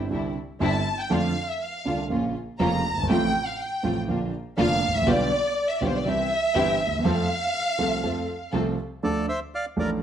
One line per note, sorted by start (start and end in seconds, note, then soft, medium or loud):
0.10 0.32 C2 soft
0.10 0.32 C3 soft
0.10 0.32 D3 soft
0.10 0.32 G3 soft
0.10 0.32 C4 soft
0.10 0.32 D4 soft
0.10 0.32 E4 soft
0.10 0.32 E4 medium
0.60 0.82 G1 medium
0.60 0.82 G2 medium
0.60 0.82 D3 medium
0.60 0.82 G3 medium
0.60 0.82 C4 medium
0.60 0.82 D4 medium
0.60 0.82 E4 medium
0.60 0.97 A5 medium
1.00 1.12 G5 medium
1.10 1.32 F2 medium
1.10 1.32 D3 medium
1.10 1.32 F3 medium
1.10 1.32 A3 medium
1.10 1.32 C4 medium
1.10 1.32 D4 medium
1.10 1.32 F4 medium
1.10 1.49 F5 medium
1.49 1.61 E5 medium
1.61 1.98 F5 medium
1.85 2.07 C2 medium
1.85 2.06 C3 medium
1.85 2.07 D3 soft
1.85 2.06 A3 soft
1.85 2.07 A3 soft
1.85 2.07 C4 soft
1.85 2.06 D4 soft
1.85 2.07 F4 soft
2.10 2.31 A#1 medium
2.10 2.31 A#2 soft
2.10 2.31 C#3 soft
2.10 2.31 F3 soft
2.10 2.31 A#3 soft
2.10 2.31 C#4 soft
2.10 2.31 F4 soft
2.10 2.32 F4 medium
2.59 2.81 F1 medium
2.59 2.81 F2 medium
2.59 2.81 C#3 medium
2.59 2.81 F3 medium
2.59 2.81 A#3 medium
2.59 2.81 C#4 medium
2.59 2.81 F4 medium
2.59 2.94 A#5 medium
2.91 2.97 F#1 soft
2.97 3.03 G1 medium
2.97 3.09 A5 medium
3.03 3.09 G#1 medium
3.09 3.30 A1 medium
3.09 3.30 A2 medium
3.09 3.30 C3 medium
3.09 3.30 F3 medium
3.09 3.30 A3 medium
3.09 3.30 C4 medium
3.09 3.30 F4 medium
3.09 3.44 G5 medium
3.47 3.59 F5 medium
3.59 3.96 G5 medium
3.83 4.04 A1 medium
3.83 4.04 A2 medium
3.83 4.04 C3 soft
3.83 4.04 F3 soft
3.83 4.04 A3 soft
3.83 4.04 C4 soft
3.83 4.04 F4 medium
3.83 4.04 F4 soft
4.08 4.29 A#1 medium
4.08 4.29 A#2 medium
4.08 4.29 D3 soft
4.08 4.29 F3 soft
4.08 4.29 A#3 soft
4.08 4.29 D4 soft
4.08 4.29 F4 soft
4.57 4.78 F1 medium
4.57 4.78 F2 medium
4.57 4.78 D3 medium
4.57 4.78 F3 medium
4.57 4.78 A#3 medium
4.57 4.78 D4 medium
4.57 4.78 F4 medium
4.57 4.92 F5 medium
4.88 4.94 G#1 soft
4.94 5.01 A1 medium
4.94 5.07 E5 medium
5.01 5.07 A#1 medium
5.05 5.27 B1 medium
5.05 5.27 B2 medium
5.05 5.27 D3 medium
5.05 5.27 G3 medium
5.05 5.27 B3 medium
5.05 5.27 F4 medium
5.05 5.27 G4 medium
5.05 5.69 D5 medium
5.69 5.78 E5 medium
5.78 6.01 B1 medium
5.78 6.02 B2 medium
5.78 6.01 D3 soft
5.78 6.02 G3 soft
5.78 6.01 B3 soft
5.78 6.02 B3 soft
5.78 6.01 F4 soft
5.78 6.02 F4 medium
5.78 6.02 G4 medium
5.78 5.87 D5 medium
5.87 5.96 C5 medium
5.96 6.05 D5 medium
6.05 6.26 C2 medium
6.05 6.26 C3 medium
6.05 6.26 E3 soft
6.05 6.26 G3 soft
6.05 6.26 C4 soft
6.05 6.26 E4 soft
6.05 6.26 G4 soft
6.05 6.27 G4 soft
6.05 7.05 E5 medium
6.54 6.76 G1 medium
6.54 6.76 G2 medium
6.54 6.76 E3 medium
6.54 6.76 G3 medium
6.54 6.75 C4 medium
6.54 6.76 C4 medium
6.54 6.75 E4 medium
6.54 6.76 G4 medium
6.87 6.92 D2 soft
6.92 6.98 D#2 medium
6.99 7.04 E2 medium
7.04 7.25 F2 medium
7.04 7.25 F3 medium
7.04 7.25 A3 medium
7.04 7.25 C4 medium
7.04 7.25 F4 medium
7.04 7.25 A4 medium
7.04 7.26 A4 medium
7.04 8.53 F5 medium
7.78 7.99 C2 medium
7.78 7.99 C3 medium
7.78 7.99 F3 soft
7.78 7.99 A3 soft
7.78 7.99 C4 soft
7.78 7.99 F4 soft
7.78 7.99 A4 medium
7.78 7.99 A4 soft
8.03 8.24 F2 medium
8.03 8.24 F3 medium
8.03 8.24 A3 soft
8.03 8.24 C4 soft
8.03 8.24 F4 soft
8.03 8.24 A4 soft
8.52 8.74 C2 medium
8.52 8.74 C3 medium
8.52 8.74 F3 medium
8.52 8.74 A3 medium
8.52 8.74 C4 medium
8.52 8.74 F4 medium
8.52 8.74 A4 medium
9.03 9.24 D2 medium
9.03 9.24 D3 medium
9.03 9.24 F3 medium
9.03 9.24 A3 medium
9.03 9.24 D4 medium
9.03 9.26 A4 medium
9.03 9.24 A4 medium
9.03 9.26 D5 medium
9.29 9.40 C5 medium
9.29 9.40 E5 medium
9.55 9.66 D5 medium
9.55 9.65 F5 medium
9.76 9.98 A1 medium
9.76 9.98 A2 medium
9.76 9.98 F3 medium
9.76 9.98 A3 medium
9.76 9.98 D4 soft
9.76 9.98 A4 medium
9.76 9.90 A#4 medium
9.76 9.90 D5 medium